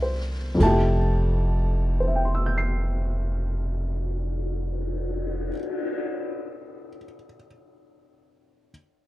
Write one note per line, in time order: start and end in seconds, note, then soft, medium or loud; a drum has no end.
0.00 0.55 C2 medium
0.00 0.59 E3 soft
0.00 0.60 D4 soft
0.00 0.60 G4 soft
0.00 0.59 A4 soft
0.00 0.34 A#4 soft
0.00 0.96 C5 soft
0.00 0.13 E5 medium
0.55 5.47 F2 soft
0.55 5.50 F3 soft
0.60 5.49 F1 medium
0.60 5.53 A3 soft
0.60 5.56 E4 soft
0.60 5.52 A5 medium
0.60 kick soft
0.60 ride soft
0.66 5.59 G4 medium
1.56 cymbal swell soft
2.00 6.89 C5 soft
2.08 6.97 E5 soft
2.16 7.04 G5 soft
2.25 7.14 C6 soft
2.35 7.24 E6 soft
2.46 7.35 G6 soft
2.58 7.47 C7 soft